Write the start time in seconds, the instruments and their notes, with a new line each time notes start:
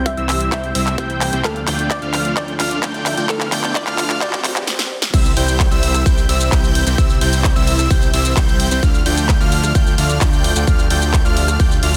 Already playing: analog synth bass C2, analog synth pad E3 G3 C4 G4, supersaw synth G3 C4 E4 C5 G5, analog synth lead G6, riser
0.06 synth pluck E5, kick, closed hi-hat
0.17 analog synth bass C2, supersaw synth G3 C4 E4 C5 E5, analog synth lead E6, closed hi-hat
0.29 clap, open hi-hat
0.41 closed hi-hat
0.52 analog synth bass C2, supersaw synth G3 C4 E4 C5 G5, synth pluck E5, analog synth lead G6, kick, clap, closed hi-hat
0.64 closed hi-hat
0.75 analog synth bass C2, supersaw synth G3 C4 E4 C5 E5, analog synth lead E6, open hi-hat
0.87 clap, closed hi-hat
0.98 analog synth bass C2, supersaw synth G3 C4 E4 C5 G5, analog synth lead G6, kick, closed hi-hat
1.10 closed hi-hat
1.21 synth pluck G5, clap, open hi-hat
1.33 analog synth bass C2, supersaw synth G3 C4 E4 C5 G5, analog synth lead G6, closed hi-hat
1.44 analog synth bass D2, analog synth pad D3 F3 A3 F4, supersaw synth A3 D4 F4 D5 F5, synth pluck A4, analog synth lead F6, kick, clap, closed hi-hat
1.56 closed hi-hat
1.67 analog synth bass D2, supersaw synth A3 D4 F4 D5 G5, analog synth lead G6, clap, open hi-hat
1.79 closed hi-hat
1.91 synth pluck D5, kick, clap, closed hi-hat
2.02 analog synth bass D2, supersaw synth A3 D4 F4 D5 F5, analog synth lead F6, closed hi-hat
2.14 clap, open hi-hat
2.25 closed hi-hat
2.37 analog synth bass D2, supersaw synth A3 D4 F4 D5 G5, synth pluck D5, analog synth lead G6, kick, clap, closed hi-hat
2.48 closed hi-hat
2.60 analog synth bass D2, supersaw synth A3 D4 F4 D5 F5, analog synth lead F6, clap, open hi-hat
2.71 closed hi-hat
2.83 analog synth bass D2, supersaw synth A3 D4 F4 D5 G5, analog synth lead G6, kick, clap, closed hi-hat
2.94 closed hi-hat
3.06 synth pluck E5, clap, open hi-hat
3.17 analog synth bass D2, supersaw synth A3 D4 F4 D5 G5, analog synth lead G6, closed hi-hat
3.29 analog synth bass D2, supersaw synth A3 D4 F4 D5 F5, analog synth pad B3, synth pluck A4, analog synth lead F6, kick, clap, closed hi-hat
3.41 clap, closed hi-hat
3.52 analog synth bass D2, supersaw synth A3 D4 F4 D5 G5, analog synth lead G6, clap, open hi-hat
3.64 clap, closed hi-hat
3.75 synth pluck D5, kick, clap, closed hi-hat
3.87 analog synth bass D2, supersaw synth A3 D4 F4 D5 F5, analog synth lead F6, clap, closed hi-hat
3.98 clap, open hi-hat
4.10 clap, closed hi-hat
4.21 analog synth bass D2, supersaw synth A3 D4 F4 D5 G5, synth pluck D5, analog synth lead G6, kick, clap, closed hi-hat, swell
4.33 clap, closed hi-hat
4.44 clap, open hi-hat
4.56 clap, closed hi-hat
4.67 snare
4.79 snare
5.02 snare
5.14 analog synth bass C2, analog synth pad C3 E3 G3 E4, supersaw synth G3 C4 E4 C5 E5, analog synth lead E6, kick, closed hi-hat, crash, shaker
5.25 closed hi-hat, shaker
5.37 analog synth bass C2, supersaw synth G3 C4 E4 C5 G5, analog synth lead G6, open hi-hat
5.48 open hi-hat, shaker
5.60 kick, cross-stick, clap, closed hi-hat, shaker
5.71 analog synth bass C2, supersaw synth G3 C4 E4 C5 E5, analog synth lead E6, closed hi-hat, shaker
5.83 open hi-hat
5.94 cross-stick, closed hi-hat, shaker
6.06 analog synth bass C2, supersaw synth G3 C4 E4 C5 G5, analog synth lead G6, kick, closed hi-hat, shaker
6.18 closed hi-hat, shaker
6.29 analog synth bass C2, supersaw synth G3 C4 E4 C5 E5, analog synth lead E6, open hi-hat
6.41 closed hi-hat, shaker
6.52 analog synth bass C2, supersaw synth G3 C4 E4 C5 G5, analog synth lead G6, kick, clap, closed hi-hat, shaker
6.64 closed hi-hat, shaker
6.75 open hi-hat
6.87 analog synth bass C2, supersaw synth G3 C4 E4 C5 G5, analog synth lead G6, closed hi-hat, shaker
6.98 analog synth bass C2, supersaw synth G3 C4 E4 C5 E5, analog synth lead E6, kick, closed hi-hat, shaker
7.10 closed hi-hat, shaker
7.21 analog synth bass C2, supersaw synth G3 C4 E4 C5 G5, analog synth lead G6, open hi-hat
7.33 open hi-hat, shaker
7.44 kick, cross-stick, clap, shaker
7.56 analog synth bass C2, supersaw synth G3 C4 E4 C5 E5, analog synth lead E6, closed hi-hat, shaker
7.67 open hi-hat
7.79 cross-stick, closed hi-hat, shaker
7.91 analog synth bass C2, supersaw synth G3 C4 E4 C5 G5, analog synth lead G6, kick, open hi-hat, shaker
8.02 closed hi-hat, shaker
8.14 analog synth bass C2, supersaw synth G3 C4 E4 C5 E5, analog synth lead E6, open hi-hat
8.25 closed hi-hat, shaker
8.37 analog synth bass C2, supersaw synth G3 C4 E4 C5 G5, analog synth lead G6, kick, clap, closed hi-hat, shaker
8.48 closed hi-hat, shaker
8.60 open hi-hat
8.71 analog synth bass C2, supersaw synth G3 C4 E4 C5 G5, analog synth lead G6, closed hi-hat, shaker
8.83 analog synth bass D2, analog synth pad D3 F3 A3 F4, supersaw synth A3 D4 F4 D5 F5, analog synth lead F6, kick, closed hi-hat, shaker
8.94 closed hi-hat, shaker
9.06 analog synth bass D2, supersaw synth A3 D4 F4 D5 G5, analog synth lead G6, open hi-hat
9.17 open hi-hat, shaker
9.29 kick, cross-stick, clap, closed hi-hat, shaker
9.40 analog synth bass D2, supersaw synth A3 D4 F4 D5 F5, analog synth lead F6, closed hi-hat, shaker
9.52 open hi-hat
9.64 cross-stick, closed hi-hat, shaker
9.75 analog synth bass D2, supersaw synth A3 D4 F4 D5 G5, analog synth lead G6, kick, closed hi-hat, shaker
9.87 closed hi-hat, shaker
9.98 analog synth bass D2, supersaw synth A3 D4 F4 D5 F5, analog synth lead F6, open hi-hat
10.10 closed hi-hat, shaker
10.21 analog synth bass D2, supersaw synth A3 D4 F4 D5 G5, analog synth lead G6, kick, clap, closed hi-hat, shaker
10.33 closed hi-hat, shaker
10.44 open hi-hat
10.56 analog synth bass D2, supersaw synth A3 D4 F4 D5 G5, analog synth lead G6, closed hi-hat, shaker
10.67 analog synth bass D2, supersaw synth A3 D4 F4 D5 F5, analog synth pad G4, analog synth lead F6, kick, closed hi-hat, shaker
10.79 closed hi-hat, shaker
10.90 analog synth bass D2, supersaw synth A3 D4 F4 D5 G5, analog synth lead G6, open hi-hat
11.02 open hi-hat, shaker
11.13 kick, cross-stick, clap, closed hi-hat, shaker
11.25 analog synth bass D2, supersaw synth A3 D4 F4 D5 F5, analog synth lead F6, closed hi-hat, shaker
11.37 open hi-hat
11.48 cross-stick, closed hi-hat, shaker
11.60 analog synth bass D2, supersaw synth A3 D4 F4 D5 G5, analog synth lead G6, kick, open hi-hat, shaker
11.71 closed hi-hat, shaker
11.83 analog synth bass D2, supersaw synth A3 D4 F4 D5 F5, analog synth lead F6, open hi-hat